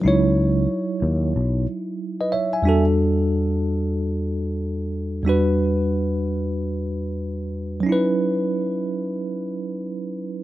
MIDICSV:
0, 0, Header, 1, 3, 480
1, 0, Start_track
1, 0, Key_signature, 4, "minor"
1, 0, Tempo, 652174
1, 34, Time_signature, 4, 2, 24, 8
1, 7680, End_track
2, 0, Start_track
2, 0, Title_t, "Tine electric piano"
2, 0, Program_c, 0, 4
2, 11, Note_on_c, 0, 54, 69
2, 26, Note_on_c, 0, 63, 58
2, 44, Note_on_c, 0, 64, 65
2, 57, Note_on_c, 0, 73, 76
2, 1221, Note_off_c, 0, 73, 0
2, 1624, Note_on_c, 0, 75, 58
2, 1626, Note_on_c, 0, 71, 50
2, 1709, Note_on_c, 0, 76, 66
2, 1710, Note_off_c, 0, 75, 0
2, 1711, Note_off_c, 0, 71, 0
2, 1713, Note_on_c, 0, 73, 51
2, 1852, Note_off_c, 0, 76, 0
2, 1855, Note_off_c, 0, 73, 0
2, 1864, Note_on_c, 0, 80, 56
2, 1868, Note_on_c, 0, 76, 47
2, 1913, Note_off_c, 0, 54, 0
2, 1921, Note_off_c, 0, 63, 0
2, 1930, Note_off_c, 0, 64, 0
2, 1931, Note_on_c, 0, 40, 65
2, 1940, Note_on_c, 0, 55, 63
2, 1953, Note_on_c, 0, 62, 67
2, 1967, Note_on_c, 0, 66, 58
2, 1978, Note_on_c, 0, 69, 75
2, 2091, Note_off_c, 0, 80, 0
2, 2093, Note_off_c, 0, 76, 0
2, 3833, Note_off_c, 0, 40, 0
2, 3838, Note_off_c, 0, 55, 0
2, 3844, Note_off_c, 0, 62, 0
2, 3850, Note_on_c, 0, 40, 63
2, 3851, Note_off_c, 0, 66, 0
2, 3856, Note_off_c, 0, 69, 0
2, 3863, Note_on_c, 0, 55, 62
2, 3874, Note_on_c, 0, 62, 60
2, 3883, Note_on_c, 0, 66, 63
2, 3894, Note_on_c, 0, 71, 74
2, 5743, Note_on_c, 0, 54, 73
2, 5752, Note_off_c, 0, 40, 0
2, 5759, Note_off_c, 0, 55, 0
2, 5764, Note_on_c, 0, 61, 67
2, 5765, Note_off_c, 0, 62, 0
2, 5769, Note_off_c, 0, 66, 0
2, 5775, Note_off_c, 0, 71, 0
2, 5788, Note_on_c, 0, 63, 59
2, 5808, Note_on_c, 0, 64, 63
2, 5831, Note_on_c, 0, 71, 78
2, 7680, Note_off_c, 0, 54, 0
2, 7680, Note_off_c, 0, 61, 0
2, 7680, Note_off_c, 0, 63, 0
2, 7680, Note_off_c, 0, 64, 0
2, 7680, Note_off_c, 0, 71, 0
2, 7680, End_track
3, 0, Start_track
3, 0, Title_t, "Fretless electric bass"
3, 0, Program_c, 1, 35
3, 37, Note_on_c, 1, 37, 96
3, 486, Note_off_c, 1, 37, 0
3, 753, Note_on_c, 1, 39, 85
3, 973, Note_off_c, 1, 39, 0
3, 1001, Note_on_c, 1, 35, 75
3, 1217, Note_off_c, 1, 35, 0
3, 7680, End_track
0, 0, End_of_file